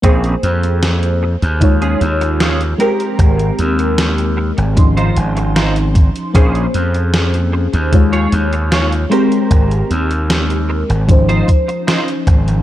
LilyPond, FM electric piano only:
\new Staff \with { instrumentName = "FM electric piano" } { \time 4/4 \key aes \major \tempo 4 = 76 <bes aes' c''>2 <aes ees' f' des''>4. <aes c' g' bes'>8~ | <aes c' g' bes'>2 <f des' ees' c'''>2 | <bes des' aes' c''>2 <aes ees' f' des''>4. <aes c' g' bes'>8~ | <aes c' g' bes'>2 <f des' ees' c''>2 | }